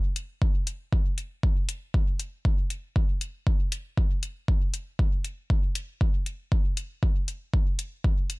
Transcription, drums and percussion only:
0.16 closed hi-hat
0.42 kick
0.67 closed hi-hat
0.93 kick
1.18 closed hi-hat
1.43 kick
1.69 closed hi-hat
1.94 kick
2.20 closed hi-hat
2.45 kick
2.70 closed hi-hat
2.96 kick
3.21 closed hi-hat
3.47 kick
3.72 closed hi-hat
3.97 kick
4.23 closed hi-hat
4.48 kick
4.74 closed hi-hat
4.99 kick
5.25 closed hi-hat
5.50 kick
5.75 closed hi-hat
6.01 kick
6.26 closed hi-hat
6.52 kick
6.77 closed hi-hat
7.03 kick
7.28 closed hi-hat
7.54 kick
7.79 closed hi-hat
8.04 kick
8.30 closed hi-hat

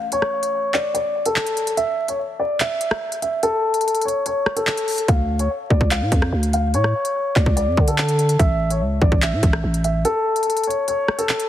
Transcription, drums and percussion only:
0.12 closed hi-hat
0.22 cross-stick
0.43 closed hi-hat
0.74 clap
0.95 closed hi-hat
1.26 closed hi-hat
1.36 clap
1.47 closed hi-hat
1.57 closed hi-hat
1.67 closed hi-hat
1.77 closed hi-hat
2.08 closed hi-hat
2.60 clap, closed hi-hat
2.81 closed hi-hat
2.91 cross-stick
3.12 closed hi-hat
3.22 closed hi-hat
3.43 closed hi-hat
3.74 closed hi-hat
3.81 closed hi-hat
3.88 closed hi-hat
3.95 closed hi-hat
4.01 closed hi-hat
4.08 closed hi-hat
4.26 closed hi-hat
4.46 cross-stick
4.57 closed hi-hat
4.67 clap
4.77 closed hi-hat
4.88 open hi-hat
4.98 closed hi-hat
5.08 kick, closed hi-hat
5.39 closed hi-hat
5.70 kick
5.81 kick
5.91 clap, closed hi-hat
6.12 kick, closed hi-hat
6.22 cross-stick
6.43 closed hi-hat
6.53 closed hi-hat
6.74 closed hi-hat
6.84 cross-stick
7.05 closed hi-hat
7.36 kick, clap
7.46 kick
7.57 closed hi-hat
7.77 kick
7.88 closed hi-hat
7.98 clap
8.09 closed hi-hat
8.19 closed hi-hat
8.29 closed hi-hat
8.39 kick, closed hi-hat
8.70 closed hi-hat
9.01 kick
9.12 kick
9.22 clap, closed hi-hat
9.43 kick, closed hi-hat
9.53 cross-stick
9.74 closed hi-hat
9.84 closed hi-hat
10.05 closed hi-hat
10.36 closed hi-hat
10.43 closed hi-hat
10.50 closed hi-hat
10.57 closed hi-hat
10.63 closed hi-hat
10.70 closed hi-hat
10.88 closed hi-hat
11.08 cross-stick
11.19 closed hi-hat
11.29 clap
11.40 closed hi-hat

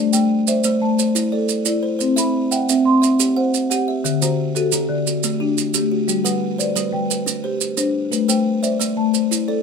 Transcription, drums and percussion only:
0.13 maracas
0.47 maracas
0.64 maracas
0.99 maracas
1.16 maracas
1.49 maracas
1.65 maracas
2.00 maracas
2.17 maracas
2.52 maracas
2.69 maracas
3.03 maracas
3.20 maracas
3.54 maracas
3.71 maracas
4.05 maracas
4.22 maracas
4.56 maracas
4.72 maracas
5.07 maracas
5.23 maracas
5.58 maracas
5.74 maracas
6.09 maracas
6.26 maracas
6.60 maracas
6.76 maracas
7.11 maracas
7.27 maracas
7.61 maracas
7.77 maracas
8.13 maracas
8.29 maracas
8.64 maracas
8.81 maracas
9.14 maracas
9.32 maracas

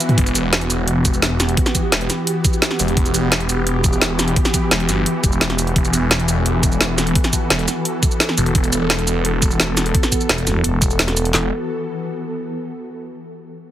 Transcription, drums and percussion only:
0.00 closed hi-hat, shaker
0.09 closed hi-hat, mid tom
0.18 kick, closed hi-hat
0.27 closed hi-hat, shaker
0.35 closed hi-hat, shaker
0.53 snare, closed hi-hat
0.61 closed hi-hat
0.70 closed hi-hat, shaker
0.88 closed hi-hat
1.05 kick, closed hi-hat, shaker
1.14 shaker
1.22 snare, closed hi-hat
1.40 snare, closed hi-hat, shaker
1.49 closed hi-hat
1.57 kick, closed hi-hat
1.66 snare, closed hi-hat, shaker
1.75 kick, closed hi-hat, shaker
1.92 snare, closed hi-hat
2.01 closed hi-hat
2.10 snare, closed hi-hat, shaker
2.27 closed hi-hat
2.45 kick, closed hi-hat, shaker
2.53 shaker
2.62 snare, closed hi-hat
2.71 snare
2.79 closed hi-hat, shaker
2.88 closed hi-hat
2.97 kick, closed hi-hat
3.06 closed hi-hat, shaker
3.14 closed hi-hat, shaker
3.32 snare, closed hi-hat
3.40 closed hi-hat
3.49 closed hi-hat, shaker
3.67 closed hi-hat
3.84 kick, closed hi-hat, shaker
3.93 shaker
4.02 snare, closed hi-hat
4.19 snare, closed hi-hat, shaker
4.28 closed hi-hat
4.36 kick, closed hi-hat
4.45 snare, closed hi-hat, shaker
4.54 kick, closed hi-hat, shaker
4.71 snare, closed hi-hat
4.80 closed hi-hat
4.89 snare, closed hi-hat, shaker
5.06 closed hi-hat
5.24 kick, closed hi-hat, shaker
5.32 shaker
5.41 snare, closed hi-hat
5.50 snare, closed hi-hat
5.59 closed hi-hat, shaker
5.67 closed hi-hat
5.76 kick, closed hi-hat
5.85 closed hi-hat, shaker
5.93 closed hi-hat, shaker
6.11 snare, closed hi-hat
6.20 closed hi-hat
6.28 closed hi-hat, shaker
6.46 closed hi-hat
6.63 kick, closed hi-hat, shaker
6.72 shaker
6.81 snare, closed hi-hat
6.98 snare, closed hi-hat, shaker
7.07 closed hi-hat
7.15 kick, closed hi-hat
7.24 snare, closed hi-hat, shaker
7.33 kick, closed hi-hat, shaker
7.50 snare, closed hi-hat
7.59 closed hi-hat
7.68 snare, closed hi-hat, shaker
7.85 closed hi-hat
8.03 kick, closed hi-hat, shaker
8.11 shaker
8.20 snare, closed hi-hat
8.29 snare
8.38 closed hi-hat, shaker
8.46 closed hi-hat
8.55 kick, closed hi-hat
8.64 closed hi-hat, shaker
8.72 closed hi-hat, shaker
8.90 snare, closed hi-hat
8.99 closed hi-hat
9.07 closed hi-hat, shaker
9.25 closed hi-hat
9.42 kick, closed hi-hat, shaker
9.51 shaker
9.60 snare, closed hi-hat
9.77 snare, closed hi-hat, shaker
9.86 closed hi-hat
9.95 kick, closed hi-hat
10.03 snare, closed hi-hat, shaker
10.12 kick, closed hi-hat, shaker
10.21 shaker
10.29 snare, closed hi-hat
10.38 closed hi-hat
10.47 snare, closed hi-hat, shaker
10.64 closed hi-hat
10.82 kick, closed hi-hat, shaker
10.90 shaker
10.99 snare, closed hi-hat
11.08 snare, closed hi-hat
11.17 closed hi-hat, shaker
11.25 closed hi-hat
11.34 snare, clap

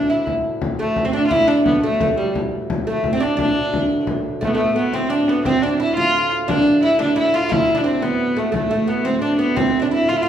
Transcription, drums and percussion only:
0.11 frame drum
0.27 frame drum
0.61 frame drum
0.96 frame drum
1.31 frame drum
1.66 frame drum
2.00 frame drum
2.35 frame drum
2.70 frame drum
3.04 frame drum
3.39 frame drum
3.56 frame drum
3.73 frame drum
4.07 frame drum
4.42 frame drum
4.60 frame drum
4.93 frame drum
5.11 frame drum
5.45 frame drum
5.63 frame drum
5.97 frame drum
6.15 frame drum
6.49 frame drum
6.67 frame drum
7.00 frame drum
7.17 frame drum
7.52 frame drum
7.69 frame drum
8.03 frame drum
8.37 frame drum
8.54 frame drum
8.71 frame drum
9.05 frame drum
9.23 frame drum
9.57 frame drum
10.09 frame drum
10.26 frame drum

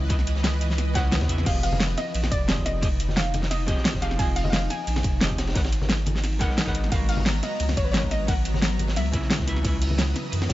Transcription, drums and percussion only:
0.10 kick, closed hi-hat, ride
0.19 snare
0.27 closed hi-hat, ride
0.36 snare
0.44 snare, closed hi-hat, ride
0.53 ride
0.61 closed hi-hat, ride
0.70 snare
0.78 snare, closed hi-hat, ride
0.95 kick, snare, closed hi-hat, ride
1.12 snare, closed hi-hat, ride
1.21 kick, snare, ride
1.29 closed hi-hat, ride
1.38 snare
1.46 kick, closed hi-hat, crash, ride
1.63 closed hi-hat, open hi-hat
1.73 high conga
1.80 snare, closed hi-hat, ride
1.97 snare, closed hi-hat, ride
2.15 closed hi-hat, ride
2.23 snare, high conga
2.32 kick, closed hi-hat, ride
2.48 snare, closed hi-hat, ride
2.58 kick
2.66 snare, closed hi-hat, ride
2.82 kick, closed hi-hat, ride
3.00 closed hi-hat, ride
3.09 snare, high conga
3.16 snare, closed hi-hat, ride
3.26 ride
3.34 closed hi-hat, ride, high conga
3.42 snare
3.51 snare, closed hi-hat, ride
3.60 ride
3.68 kick, closed hi-hat, ride
3.77 snare
3.85 snare, closed hi-hat, ride
3.94 kick, snare
4.02 closed hi-hat, ride
4.11 snare
4.19 kick, closed hi-hat, ride
4.36 closed hi-hat, open hi-hat
4.45 high conga
4.53 snare, closed hi-hat, ride
4.70 snare, closed hi-hat, ride
4.87 closed hi-hat, ride
4.96 snare, high conga
5.03 kick, closed hi-hat, ride
5.21 snare, closed hi-hat, ride
5.30 kick
5.38 snare, closed hi-hat, ride
5.47 snare, ride
5.55 kick, snare, closed hi-hat, ride
5.64 snare, ride
5.72 closed hi-hat, ride
5.81 snare, high conga
5.89 snare, closed hi-hat, ride
5.99 ride
6.06 closed hi-hat, ride, high conga
6.16 snare
6.24 snare, closed hi-hat, ride
6.33 ride
6.41 kick, closed hi-hat, ride
6.50 snare
6.58 snare, closed hi-hat, ride
6.67 kick, snare
6.75 closed hi-hat, ride
6.84 snare
6.92 kick, closed hi-hat, ride
7.09 closed hi-hat, open hi-hat
7.17 high conga
7.26 snare, closed hi-hat, ride
7.43 snare, closed hi-hat, ride
7.60 closed hi-hat, ride
7.69 snare, high conga
7.77 kick, closed hi-hat, ride
7.94 snare, closed hi-hat, ride
8.03 kick
8.11 snare, closed hi-hat, ride
8.28 kick, closed hi-hat, ride
8.45 closed hi-hat, ride
8.54 snare, high conga
8.62 snare, closed hi-hat, ride
8.72 ride
8.79 closed hi-hat, ride, high conga
8.88 snare
8.96 snare, closed hi-hat, ride
9.06 ride
9.13 kick, closed hi-hat, ride
9.22 snare
9.30 snare, closed hi-hat, ride
9.39 kick, snare
9.48 closed hi-hat, ride
9.56 snare
9.65 kick, closed hi-hat, ride
9.82 closed hi-hat, open hi-hat
9.90 high conga
9.98 snare, closed hi-hat, ride
10.16 snare, closed hi-hat, ride
10.32 closed hi-hat, ride
10.42 snare, high conga
10.49 kick, snare, closed hi-hat, ride

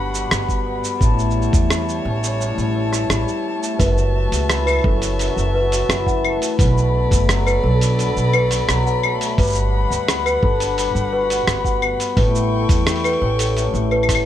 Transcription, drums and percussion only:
0.15 shaker
0.31 cross-stick, shaker
0.49 kick, shaker
0.84 shaker
1.01 kick, shaker
1.19 shaker
1.30 shaker
1.42 shaker
1.53 kick, shaker
1.70 cross-stick, shaker
1.89 shaker
2.24 shaker
2.41 shaker
2.58 shaker
2.93 cross-stick, shaker
3.10 cross-stick, shaker
3.28 shaker
3.63 shaker
3.80 kick, open hi-hat, shaker
3.98 shaker
4.32 open hi-hat, shaker
4.50 cross-stick, open hi-hat, shaker
4.67 claves, shaker
4.69 claves
4.72 claves
4.79 claves
4.81 kick, claves
5.02 open hi-hat, shaker
5.19 open hi-hat, shaker
5.38 shaker
5.72 open hi-hat, shaker
5.90 cross-stick, open hi-hat, shaker
6.07 kick, shaker
6.25 claves
6.42 open hi-hat, shaker
6.59 kick, open hi-hat, shaker
6.78 shaker
7.11 kick, open hi-hat, shaker
7.29 cross-stick, open hi-hat, shaker
7.47 claves, shaker
7.81 open hi-hat, shaker
7.99 open hi-hat, shaker
8.17 shaker
8.33 claves
8.51 cross-stick, open hi-hat, shaker
8.69 cross-stick, open hi-hat, shaker
8.87 shaker
9.03 claves
9.21 open hi-hat, shaker
9.38 kick, open hi-hat, shaker
9.42 shaker
9.44 shaker
9.47 shaker
9.50 shaker
9.52 shaker
9.55 shaker
9.57 shaker
9.92 shaker
10.08 cross-stick, open hi-hat, shaker
10.26 claves, shaker
10.43 kick
10.60 open hi-hat, shaker
10.78 open hi-hat, shaker
10.96 shaker
11.30 open hi-hat, shaker
11.47 cross-stick, open hi-hat, shaker
11.65 kick, shaker
11.82 claves
12.00 open hi-hat, shaker
12.17 kick, open hi-hat
12.35 shaker
12.69 kick, open hi-hat, shaker
12.87 cross-stick, open hi-hat, shaker
12.91 open hi-hat
12.96 open hi-hat
13.00 open hi-hat
13.04 open hi-hat, claves, shaker
13.09 open hi-hat
13.13 open hi-hat
13.17 open hi-hat
13.39 open hi-hat, shaker
13.57 open hi-hat, shaker
13.75 shaker
13.91 claves
14.03 claves
14.09 kick, cross-stick, open hi-hat, shaker
14.15 claves

